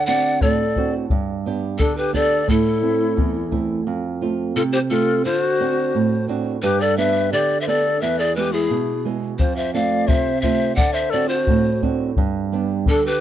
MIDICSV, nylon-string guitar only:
0, 0, Header, 1, 2, 480
1, 0, Start_track
1, 0, Tempo, 691244
1, 770, Time_signature, 2, 2, 24, 8
1, 9170, End_track
2, 0, Start_track
2, 0, Title_t, "Nylon-string guitar"
2, 0, Program_c, 0, 24
2, 0, Note_on_c, 0, 50, 67
2, 53, Note_on_c, 0, 60, 46
2, 56, Note_on_c, 0, 62, 42
2, 60, Note_on_c, 0, 66, 49
2, 277, Note_off_c, 0, 50, 0
2, 296, Note_on_c, 0, 45, 59
2, 436, Note_off_c, 0, 60, 0
2, 438, Note_off_c, 0, 62, 0
2, 439, Note_off_c, 0, 66, 0
2, 536, Note_on_c, 0, 60, 49
2, 538, Note_on_c, 0, 62, 43
2, 540, Note_on_c, 0, 66, 55
2, 726, Note_off_c, 0, 60, 0
2, 726, Note_off_c, 0, 62, 0
2, 728, Note_off_c, 0, 66, 0
2, 758, Note_off_c, 0, 45, 0
2, 770, Note_on_c, 0, 43, 70
2, 1014, Note_on_c, 0, 59, 44
2, 1019, Note_on_c, 0, 62, 38
2, 1021, Note_on_c, 0, 67, 50
2, 1234, Note_off_c, 0, 43, 0
2, 1251, Note_on_c, 0, 50, 65
2, 1395, Note_off_c, 0, 59, 0
2, 1397, Note_off_c, 0, 62, 0
2, 1399, Note_off_c, 0, 67, 0
2, 1479, Note_on_c, 0, 59, 51
2, 1484, Note_on_c, 0, 62, 45
2, 1488, Note_on_c, 0, 67, 54
2, 1675, Note_off_c, 0, 59, 0
2, 1676, Note_off_c, 0, 62, 0
2, 1679, Note_off_c, 0, 67, 0
2, 1715, Note_off_c, 0, 50, 0
2, 1719, Note_on_c, 0, 45, 66
2, 1960, Note_on_c, 0, 57, 45
2, 1964, Note_on_c, 0, 60, 40
2, 1970, Note_on_c, 0, 64, 48
2, 2188, Note_off_c, 0, 45, 0
2, 2201, Note_on_c, 0, 40, 64
2, 2346, Note_off_c, 0, 57, 0
2, 2349, Note_off_c, 0, 60, 0
2, 2352, Note_off_c, 0, 64, 0
2, 2439, Note_on_c, 0, 57, 48
2, 2445, Note_on_c, 0, 60, 43
2, 2446, Note_on_c, 0, 64, 52
2, 2634, Note_off_c, 0, 57, 0
2, 2637, Note_off_c, 0, 60, 0
2, 2637, Note_off_c, 0, 64, 0
2, 2669, Note_off_c, 0, 40, 0
2, 2686, Note_on_c, 0, 41, 70
2, 2925, Note_on_c, 0, 57, 42
2, 2928, Note_on_c, 0, 60, 39
2, 2931, Note_on_c, 0, 65, 48
2, 3151, Note_off_c, 0, 41, 0
2, 3164, Note_on_c, 0, 48, 64
2, 3309, Note_off_c, 0, 57, 0
2, 3310, Note_off_c, 0, 60, 0
2, 3312, Note_off_c, 0, 65, 0
2, 3407, Note_on_c, 0, 57, 49
2, 3408, Note_on_c, 0, 60, 46
2, 3411, Note_on_c, 0, 65, 55
2, 3597, Note_off_c, 0, 60, 0
2, 3598, Note_off_c, 0, 57, 0
2, 3600, Note_off_c, 0, 65, 0
2, 3630, Note_off_c, 0, 48, 0
2, 3647, Note_on_c, 0, 50, 69
2, 3890, Note_on_c, 0, 60, 46
2, 3893, Note_on_c, 0, 62, 42
2, 3897, Note_on_c, 0, 66, 51
2, 4111, Note_off_c, 0, 50, 0
2, 4130, Note_on_c, 0, 45, 63
2, 4271, Note_off_c, 0, 60, 0
2, 4274, Note_off_c, 0, 62, 0
2, 4275, Note_off_c, 0, 66, 0
2, 4363, Note_on_c, 0, 60, 49
2, 4367, Note_on_c, 0, 62, 49
2, 4369, Note_on_c, 0, 66, 56
2, 4555, Note_off_c, 0, 60, 0
2, 4557, Note_off_c, 0, 62, 0
2, 4559, Note_off_c, 0, 66, 0
2, 4592, Note_off_c, 0, 45, 0
2, 4605, Note_on_c, 0, 43, 70
2, 4846, Note_on_c, 0, 59, 46
2, 4850, Note_on_c, 0, 67, 52
2, 4852, Note_on_c, 0, 62, 42
2, 5070, Note_off_c, 0, 43, 0
2, 5087, Note_on_c, 0, 50, 67
2, 5229, Note_off_c, 0, 59, 0
2, 5231, Note_off_c, 0, 62, 0
2, 5231, Note_off_c, 0, 67, 0
2, 5328, Note_on_c, 0, 59, 49
2, 5333, Note_on_c, 0, 62, 47
2, 5337, Note_on_c, 0, 67, 55
2, 5518, Note_off_c, 0, 59, 0
2, 5522, Note_off_c, 0, 62, 0
2, 5523, Note_off_c, 0, 67, 0
2, 5551, Note_off_c, 0, 50, 0
2, 5569, Note_on_c, 0, 40, 71
2, 5804, Note_on_c, 0, 56, 43
2, 5806, Note_on_c, 0, 59, 39
2, 5808, Note_on_c, 0, 64, 51
2, 6032, Note_off_c, 0, 40, 0
2, 6043, Note_on_c, 0, 47, 59
2, 6188, Note_off_c, 0, 56, 0
2, 6190, Note_off_c, 0, 59, 0
2, 6190, Note_off_c, 0, 64, 0
2, 6286, Note_on_c, 0, 56, 51
2, 6290, Note_on_c, 0, 59, 48
2, 6295, Note_on_c, 0, 64, 55
2, 6478, Note_off_c, 0, 56, 0
2, 6480, Note_off_c, 0, 59, 0
2, 6482, Note_off_c, 0, 64, 0
2, 6510, Note_off_c, 0, 47, 0
2, 6526, Note_on_c, 0, 41, 66
2, 6764, Note_on_c, 0, 57, 47
2, 6766, Note_on_c, 0, 60, 39
2, 6770, Note_on_c, 0, 65, 49
2, 6992, Note_off_c, 0, 41, 0
2, 7008, Note_on_c, 0, 48, 65
2, 7150, Note_off_c, 0, 57, 0
2, 7150, Note_off_c, 0, 60, 0
2, 7151, Note_off_c, 0, 65, 0
2, 7246, Note_on_c, 0, 57, 51
2, 7250, Note_on_c, 0, 65, 54
2, 7251, Note_on_c, 0, 60, 47
2, 7439, Note_off_c, 0, 57, 0
2, 7440, Note_off_c, 0, 60, 0
2, 7441, Note_off_c, 0, 65, 0
2, 7474, Note_off_c, 0, 48, 0
2, 7489, Note_on_c, 0, 50, 70
2, 7729, Note_on_c, 0, 60, 44
2, 7731, Note_on_c, 0, 62, 40
2, 7735, Note_on_c, 0, 66, 53
2, 7955, Note_off_c, 0, 50, 0
2, 7975, Note_on_c, 0, 45, 65
2, 8114, Note_off_c, 0, 60, 0
2, 8115, Note_off_c, 0, 62, 0
2, 8117, Note_off_c, 0, 66, 0
2, 8212, Note_on_c, 0, 60, 49
2, 8215, Note_on_c, 0, 62, 46
2, 8216, Note_on_c, 0, 66, 52
2, 8404, Note_off_c, 0, 60, 0
2, 8405, Note_off_c, 0, 66, 0
2, 8406, Note_off_c, 0, 62, 0
2, 8439, Note_off_c, 0, 45, 0
2, 8455, Note_on_c, 0, 43, 71
2, 8696, Note_on_c, 0, 55, 45
2, 8699, Note_on_c, 0, 59, 42
2, 8704, Note_on_c, 0, 62, 49
2, 8921, Note_off_c, 0, 43, 0
2, 8938, Note_on_c, 0, 50, 67
2, 9080, Note_off_c, 0, 55, 0
2, 9083, Note_off_c, 0, 59, 0
2, 9084, Note_off_c, 0, 62, 0
2, 9170, Note_off_c, 0, 50, 0
2, 9170, End_track
0, 0, End_of_file